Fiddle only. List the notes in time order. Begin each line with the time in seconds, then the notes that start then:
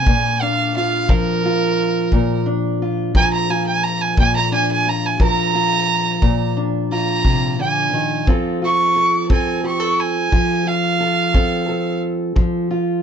Already playing: G#5
0.41 F5
0.77 F5
1.10 A#4
3.16 G#5
3.33 A#5
3.51 G#5
3.67 G#5
3.84 A#5
4.01 G#5
4.19 G#5
4.36 A#5
4.54 G#5
4.72 G#5
4.89 A#5
5.06 G#5
5.24 A#5
6.93 A#5
7.61 G#5
8.65 C#6
9.32 G#5
9.67 C#6
10.00 G#5
10.67 F5